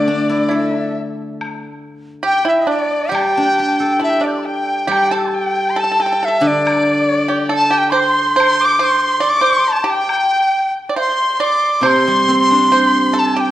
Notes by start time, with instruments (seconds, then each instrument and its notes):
Already playing: guzheng D3 A3, pipa D4, erhu D5, dizi D5
0.07 guzheng D4
0.29 guzheng E4
0.49 pipa E4, guzheng A4
0.56 erhu E5
0.76 pipa D4
1.41 high woodblock
2.23 pipa G4, dizi G5
2.29 erhu G5
2.45 pipa E4, dizi E5, erhu E5
2.62 dizi E5
2.67 pipa D4, dizi D5
2.71 erhu D5
3.09 guzheng G3, pipa G4, dizi G5, erhu G5
3.15 high woodblock
3.21 erhu A5
3.27 erhu G5
3.35 guzheng D4, erhu A5
3.43 erhu G5
3.53 erhu A5
3.59 guzheng G4, erhu G5
3.68 erhu A5
3.76 guzheng A4, erhu G5
3.82 erhu A5
3.92 erhu G5
3.99 pipa E4, guzheng D5, dizi E5, erhu A5
4.09 erhu G5
4.21 pipa D4, dizi D5, erhu D5
4.27 dizi G6
4.32 dizi D6 E6
4.37 dizi A5 C6
4.45 erhu G5, dizi G5
4.87 guzheng G3, pipa G4, erhu G5, dizi G5
4.92 high woodblock
5.10 pipa A4, erhu A5, dizi A5
5.16 dizi E6 G6
5.24 dizi C6 D6
5.30 erhu G5, dizi A5
5.35 dizi G5
5.70 erhu C6
5.76 pipa A4, erhu A5, dizi A5
5.84 pipa A4
5.91 pipa A4
6.00 pipa A4, dizi G5
6.06 pipa A4
6.12 pipa A4
6.23 pipa A4, dizi E5
6.28 pipa A4
6.38 guzheng D3, pipa D4, erhu E5
6.45 erhu D5, dizi D5
6.67 high woodblock
7.29 pipa G4
7.49 pipa A4
7.54 erhu A5, dizi A5
7.71 pipa G4, erhu G5
7.78 dizi G5
7.90 pipa C5, dizi D6
7.97 erhu C6, dizi C6
8.36 pipa C5, erhu C6
8.40 dizi C6, high woodblock
8.61 erhu D6
8.65 dizi D6
8.79 pipa C5
8.83 erhu C6, dizi C6
9.20 pipa D5, erhu D6
9.30 dizi D6
9.41 pipa C5
9.51 dizi C6
9.68 erhu A5
9.72 dizi A5
9.84 pipa G4, dizi A5
9.89 erhu G5
9.94 dizi G5
10.09 high woodblock
10.89 pipa D5
10.96 pipa C5, erhu C6, low woodblock
11.00 dizi C6
11.40 pipa D5
11.44 dizi D6
11.81 guzheng C3, pipa C5, erhu C6
11.85 dizi C6, high woodblock
12.07 guzheng G3
12.28 guzheng C4
12.51 guzheng D4
12.71 guzheng G4, pipa C5, erhu C6
13.14 pipa A4, erhu A5
13.19 dizi A5
13.35 pipa G4, erhu G5
13.41 dizi G5